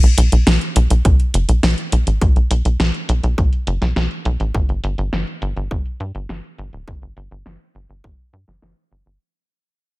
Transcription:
0.03 0.15 B1 medium
0.03 closed hi-hat soft
0.18 0.29 B1 loud
0.18 closed hi-hat medium
0.32 0.44 B1 medium
0.32 closed hi-hat medium
0.47 0.58 B1 loud
0.47 snare loud
0.47 closed hi-hat medium
0.61 closed hi-hat soft
0.76 0.87 B1 medium
0.76 closed hi-hat medium
0.90 1.02 B1 medium
0.90 closed hi-hat medium
1.05 1.17 B1 loud
1.05 kick loud
1.05 closed hi-hat medium
1.20 closed hi-hat soft
1.34 1.46 F#1 medium
1.34 closed hi-hat medium
1.49 1.60 B1 medium
1.49 closed hi-hat medium
1.63 1.75 B1 loud
1.63 snare loud
1.63 closed hi-hat medium
1.78 closed hi-hat soft
1.92 2.04 B1 medium
1.92 closed hi-hat medium
2.07 2.19 A1 medium
2.07 closed hi-hat medium
2.21 2.33 B1 loud
2.21 kick loud
2.21 closed hi-hat medium
2.36 2.48 B1 medium
2.36 closed hi-hat soft
2.51 2.62 B1 medium
2.51 closed hi-hat medium
2.65 2.77 B1 medium
2.65 closed hi-hat soft
2.80 2.91 B1 medium
2.80 snare loud
2.80 closed hi-hat medium
2.94 closed hi-hat soft
3.09 3.20 B1 medium
3.09 closed hi-hat medium
3.23 3.35 B1 medium
3.23 closed hi-hat medium
3.38 3.50 B1 loud
3.38 kick loud
3.38 closed hi-hat medium
3.53 closed hi-hat soft
3.67 3.79 F#1 medium
3.67 closed hi-hat medium
3.82 3.93 B1 medium
3.82 snare soft
3.82 closed hi-hat soft
3.96 4.08 B1 loud
3.96 snare loud
3.96 closed hi-hat medium
4.11 closed hi-hat soft
4.25 4.37 B1 medium
4.25 closed hi-hat medium
4.40 4.52 A1 medium
4.40 closed hi-hat soft
4.55 4.66 G1 loud
4.55 kick loud
4.55 closed hi-hat soft
4.69 4.81 G1 medium
4.69 closed hi-hat soft
4.84 4.95 G1 medium
4.84 closed hi-hat medium
4.98 5.10 G1 medium
4.98 closed hi-hat soft
5.13 5.24 G1 medium
5.13 snare loud
5.13 closed hi-hat soft
5.27 closed hi-hat soft
5.42 5.53 G1 medium
5.42 closed hi-hat medium
5.56 5.68 G1 medium
5.56 closed hi-hat medium
5.71 5.83 G1 loud
5.71 kick loud
5.71 closed hi-hat medium
5.86 closed hi-hat soft
6.00 6.12 G2 medium
6.00 closed hi-hat medium
6.15 6.26 G1 medium
6.15 closed hi-hat soft
6.29 6.41 G1 medium
6.29 snare loud
6.29 closed hi-hat soft
6.44 closed hi-hat soft
6.58 6.70 G1 medium
6.58 closed hi-hat medium
6.73 6.85 D1 medium
6.73 closed hi-hat soft
6.88 6.99 G1 loud
6.88 kick loud
6.88 closed hi-hat soft
7.02 7.14 G1 medium
7.02 closed hi-hat soft
7.17 7.28 G1 medium
7.17 closed hi-hat medium
7.31 7.43 G1 medium
7.31 closed hi-hat soft
7.46 7.57 G1 loud
7.46 snare loud
7.46 closed hi-hat soft
7.60 closed hi-hat soft
7.75 7.86 G1 medium
7.75 closed hi-hat medium
7.89 8.01 G1 medium
7.89 closed hi-hat soft
8.04 8.16 G1 loud
8.04 kick loud
8.33 8.45 G2 medium
8.33 closed hi-hat medium
8.48 8.59 G1 medium
8.48 snare soft
8.48 closed hi-hat soft
8.62 8.74 G1 medium
8.62 snare loud
8.91 9.03 G1 medium
8.91 closed hi-hat medium
9.06 9.18 G1 medium

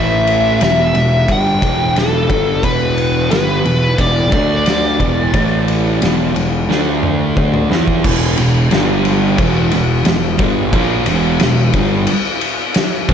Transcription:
0.00 0.57 A1 loud
0.00 0.60 A2 medium
0.00 0.60 E3 medium
0.00 0.61 A3 loud
0.00 0.62 E5 loud
0.27 ride medium
0.61 0.93 E1 medium
0.61 0.93 E2 medium
0.61 0.94 B2 medium
0.61 0.94 E3 loud
0.61 1.32 E5 loud
0.61 snare loud
0.61 ride loud
0.94 1.26 E1 medium
0.94 1.21 E2 medium
0.94 1.22 B2 medium
0.94 ride medium
1.28 1.60 G1 loud
1.28 1.61 G2 medium
1.28 1.62 D3 medium
1.28 1.62 G3 medium
1.28 2.00 G5 loud
1.28 kick loud
1.28 ride loud
1.62 2.26 E1 medium
1.62 2.29 E2 medium
1.62 2.29 B2 loud
1.62 2.30 E3 loud
1.62 kick loud
1.62 ride medium
1.96 2.64 A4 medium
1.96 snare loud
1.96 ride loud
2.30 2.61 G1 loud
2.30 2.63 G2 medium
2.30 2.63 D3 loud
2.30 2.63 G3 loud
2.30 kick loud
2.30 ride medium
2.63 3.27 E1 loud
2.63 3.30 E2 medium
2.63 3.31 B2 loud
2.63 3.31 E3 medium
2.63 3.27 B4 loud
2.63 kick loud
2.63 ride loud
2.98 ride medium
3.31 3.63 G1 medium
3.31 3.64 G2 medium
3.31 3.64 D3 medium
3.31 3.65 G3 medium
3.31 4.01 B4 medium
3.31 snare loud
3.31 ride medium
3.65 3.96 E1 medium
3.65 3.92 E2 medium
3.65 3.92 B2 medium
3.65 ride medium
3.98 4.30 E1 loud
3.98 4.31 E2 medium
3.98 4.31 B2 medium
3.98 4.32 E3 medium
3.98 7.33 D5 loud
3.98 kick loud
3.98 ride loud
4.31 4.96 D2 loud
4.31 4.99 D3 medium
4.31 4.99 A3 medium
4.31 4.99 D4 loud
4.31 kick loud
4.31 ride medium
4.66 snare loud
4.66 ride loud
5.00 5.32 E1 loud
5.00 5.33 E2 medium
5.00 5.33 B2 loud
5.00 5.33 E3 loud
5.00 kick loud
5.00 ride medium
5.34 5.98 A1 loud
5.34 6.01 A2 medium
5.34 6.01 E3 medium
5.34 6.02 A3 loud
5.34 kick loud
5.34 ride medium
5.68 ride medium
6.02 6.33 E1 loud
6.02 6.34 E2 medium
6.02 6.34 B2 medium
6.02 6.35 E3 medium
6.02 snare loud
6.02 ride medium
6.35 6.67 E1 medium
6.35 6.62 E2 medium
6.35 6.62 B2 medium
6.35 ride medium
6.69 7.33 D2 loud
6.69 7.35 D3 medium
6.69 7.36 A3 loud
6.69 7.36 D4 medium
6.69 snare medium
7.03 mid tom medium
7.36 7.68 D2 loud
7.36 7.69 D3 medium
7.36 7.70 A3 medium
7.36 7.70 D4 loud
7.36 kick medium
7.54 mid tom medium
7.70 8.02 E2 medium
7.70 8.03 E3 medium
7.70 8.03 B3 loud
7.70 8.04 E4 loud
7.70 snare loud
7.88 kick medium
8.04 8.36 E1 medium
8.04 8.37 E2 medium
8.04 8.37 B2 medium
8.04 8.37 E3 loud
8.04 kick loud
8.04 crash loud
8.37 8.69 E1 medium
8.37 8.65 E2 medium
8.37 8.65 B2 medium
8.37 ride medium
8.71 9.35 G1 loud
8.71 9.38 G2 medium
8.71 9.38 D3 medium
8.71 9.38 G3 medium
8.71 snare loud
8.71 ride medium
9.05 ride medium
9.38 9.70 E1 loud
9.38 9.70 E2 medium
9.38 9.71 B2 medium
9.38 9.72 E3 medium
9.38 kick loud
9.38 ride loud
9.71 10.04 E1 medium
9.71 9.99 E2 medium
9.71 10.00 B2 medium
9.71 ride medium
10.04 10.38 E1 medium
10.04 10.32 E2 medium
10.04 10.33 B2 medium
10.04 snare loud
10.04 ride loud
10.38 10.71 G1 loud
10.38 10.72 G2 medium
10.38 10.72 D3 loud
10.38 10.72 G3 loud
10.38 kick loud
10.38 ride medium
10.72 11.05 A#1 loud
10.72 11.06 A#2 medium
10.72 11.06 F3 medium
10.72 11.06 A#3 loud
10.72 kick loud
10.72 ride loud
11.06 11.39 E1 loud
11.06 11.39 E2 medium
11.06 11.39 B2 medium
11.06 11.40 E3 loud
11.06 ride medium
11.40 11.73 E1 medium
11.40 11.68 E2 medium
11.40 11.68 B2 medium
11.40 snare loud
11.40 ride loud
11.73 12.06 G1 loud
11.73 12.07 G2 loud
11.73 12.08 D3 loud
11.73 12.08 G3 loud
11.73 kick loud
11.73 ride medium
12.07 ride loud
12.41 ride medium
12.74 snare loud
12.74 ride loud
13.09 13.14 B1 loud
13.09 13.14 B2 loud
13.09 13.14 F#3 loud
13.09 kick loud
13.09 ride medium

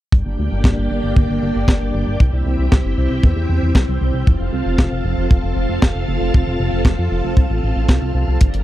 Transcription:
0.12 0.23 G1 medium
0.12 2.18 A#3 medium
0.12 2.18 D4 medium
0.12 2.18 G4 medium
0.12 2.18 D5 medium
0.12 2.18 G5 medium
0.12 kick loud
0.26 0.36 G1 medium
0.39 0.49 D2 medium
0.52 0.62 G1 medium
0.64 0.75 G1 loud
0.64 kick medium
0.64 snare loud
0.78 0.88 G1 medium
0.91 1.01 G1 medium
1.03 1.14 G1 medium
1.16 1.27 G1 loud
1.16 kick loud
1.29 1.40 G1 medium
1.43 1.53 G1 medium
1.55 1.66 G1 medium
1.68 1.79 G1 medium
1.68 kick medium
1.68 snare loud
1.81 1.92 G1 medium
1.94 2.05 G1 medium
2.07 2.17 G1 medium
2.20 2.30 C2 medium
2.20 8.37 C4 medium
2.20 4.25 E4 medium
2.20 4.25 G4 medium
2.20 4.25 E5 medium
2.20 4.25 G5 medium
2.20 kick loud
2.33 2.43 C2 medium
2.46 2.56 C2 medium
2.59 2.69 C2 medium
2.72 2.82 C2 medium
2.72 kick medium
2.72 snare loud
2.85 2.95 G1 medium
2.98 3.08 C2 medium
3.11 3.21 C2 medium
3.23 3.34 E2 loud
3.23 kick loud
3.36 3.47 E2 medium
3.49 3.60 E2 medium
3.62 3.73 E2 medium
3.75 3.85 C2 medium
3.75 kick loud
3.75 snare loud
3.88 3.99 C2 medium
4.01 4.12 C2 medium
4.14 4.24 C2 medium
4.27 4.37 F1 loud
4.27 8.37 F4 medium
4.27 8.37 A4 medium
4.27 8.37 F5 medium
4.27 8.37 A5 medium
4.27 kick loud
4.40 4.50 F1 medium
4.53 4.63 C2 medium
4.66 4.76 F1 medium
4.78 4.89 F1 loud
4.78 kick medium
4.78 snare loud
4.92 5.02 F1 medium
5.04 5.15 F1 medium
5.18 5.28 F1 medium
5.31 5.41 F1 medium
5.31 kick loud
5.43 5.54 F1 medium
5.56 5.67 F1 medium
5.69 5.80 F1 medium
5.82 5.93 F1 medium
5.82 kick medium
5.82 snare loud
5.95 6.05 F1 medium
6.08 6.18 F1 medium
6.21 6.31 F1 medium
6.34 6.45 F1 loud
6.34 kick loud
6.47 6.57 F1 medium
6.60 6.70 F1 medium
6.73 6.83 F1 medium
6.85 6.96 F1 loud
6.85 kick loud
6.85 snare loud
6.99 7.09 F2 medium
7.11 7.22 F1 medium
7.24 7.35 F1 medium
7.37 7.47 C2 loud
7.37 kick loud
7.50 7.61 A1 medium
7.63 7.74 A1 medium
7.76 7.86 A1 medium
7.89 7.99 C2 medium
7.89 kick medium
7.89 snare loud
8.02 8.12 C2 medium
8.15 8.25 C2 medium
8.28 8.38 C2 medium
8.41 8.51 G1 loud
8.41 8.64 D4 medium
8.41 8.64 G4 medium
8.41 8.64 A#4 medium
8.41 8.64 G5 medium
8.41 8.64 A#5 medium
8.41 kick loud
8.41 closed hi-hat medium
8.54 8.64 G1 medium
8.54 closed hi-hat soft

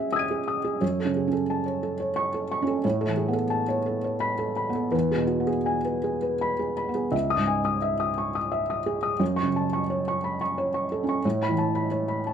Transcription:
0.00 0.78 C#3 soft
0.00 0.84 G#3 soft
0.00 0.84 F#4 soft
0.00 0.31 G#4 soft
0.00 0.84 E5 soft
0.00 0.84 G#5 soft
0.12 0.40 D#6 soft
0.12 0.77 E6 soft
0.12 0.79 G#6 soft
0.19 0.80 D#7 soft
0.31 0.58 G#4 soft
0.48 0.75 D#6 soft
0.64 0.82 G#4 soft
0.81 2.80 F#2 soft
0.81 1.09 C#5 soft
1.00 1.27 A4 soft
1.05 1.41 C#3 soft
1.17 1.33 G#4 soft
1.28 1.64 C#4 soft
1.33 1.60 A4 soft
1.50 1.77 A5 soft
1.66 1.93 C#5 soft
1.83 2.10 A4 soft
2.00 2.27 C#5 soft
2.16 2.43 C#6 medium
2.34 2.61 A4 soft
2.52 2.78 C#6 soft
2.62 2.85 C#4 soft
2.67 2.84 A4 soft
2.84 4.89 A2 medium
2.84 3.11 C#5 soft
3.01 3.28 A4 soft
3.06 3.43 E3 soft
3.17 3.35 G#4 soft
3.28 3.65 B3 soft
3.33 3.62 A4 medium
3.50 3.79 A5 soft
3.68 3.97 C#5 soft
3.86 4.14 A4 soft
4.04 4.32 C#5 soft
4.20 4.49 B5 medium
4.39 4.67 A4 soft
4.57 4.85 B5 soft
4.70 4.93 B3 soft
4.75 4.93 A4 soft
4.92 7.09 E2 soft
4.92 5.22 B4 soft
5.11 5.41 G#4 soft
5.16 5.56 B2 soft
5.27 5.47 F#4 soft
5.40 5.81 B3 soft
5.47 5.77 G#4 soft
5.66 5.96 G#5 soft
5.85 6.15 B4 soft
6.04 6.33 G#4 soft
6.22 6.52 B4 soft
6.41 6.70 B5 medium
6.59 6.89 G#4 soft
6.77 7.06 B5 soft
6.89 7.13 B3 soft
6.95 7.13 G#4 soft
7.12 9.15 C#2 medium
7.12 7.41 E5 soft
7.30 7.59 D#6 medium
7.37 7.74 G#2 soft
7.47 7.76 G#5 soft
7.65 7.93 D#6 soft
7.82 8.11 E5 soft
8.00 8.28 D#6 soft
8.18 8.35 C#6 soft
8.35 8.62 D#6 soft
8.52 8.79 E5 soft
8.70 8.97 D#6 soft
8.86 9.13 G#4 soft
9.03 9.20 D#6 soft
9.19 11.20 F#2 soft
9.19 9.47 C#5 soft
9.36 9.64 C#6 medium
9.43 9.79 C#3 soft
9.56 9.82 A5 soft
9.73 9.99 C#6 soft
9.90 10.16 C#5 soft
10.08 10.34 C#6 soft
10.24 10.40 B5 soft
10.41 10.67 C#6 soft
10.58 10.84 C#5 soft
10.74 11.01 C#6 soft
10.92 11.19 A4 soft
11.04 11.25 C#4 soft
11.09 11.25 C#6 soft
11.25 12.33 A2 medium
11.25 11.52 C#5 soft
11.43 11.69 B5 medium
11.48 11.84 E3 soft
11.58 11.86 A5 soft
11.75 12.02 B5 soft
11.91 12.19 C#5 soft
12.08 12.33 B5 soft
12.27 12.33 A5 soft

